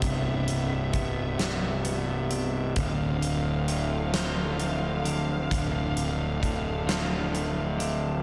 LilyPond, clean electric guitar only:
\new Staff \with { instrumentName = "Clean electric guitar" } { \clef bass \time 6/8 \key d \dorian \tempo 4. = 44 <c, c g b>4 b8 g8 b8 c8 | d,4 a8 f8 a8 d8 | d,4 a8 f8 a8 d8 | }